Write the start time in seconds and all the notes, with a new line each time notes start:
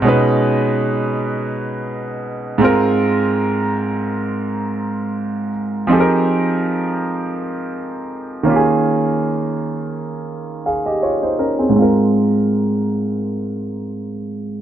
0.02 B2 G#3 C#4
0.07 D#4 B4
2.58 G#2 G#3 C4
2.63 F4 A#4
5.87 F3 C4 D#4 G4
5.92 G#4 A4
6.00 A#4
8.43 D#3 A#3 C#4
8.48 F4 G4
8.56 G#4
10.66 G#4 F5
10.86 G4 D#5
11.03 F4 C#5
11.22 D#4 C5
11.39 C#4 A#4
11.59 C4 G#4
11.69 G#2 G#3
11.76 C4 F4
11.82 A#4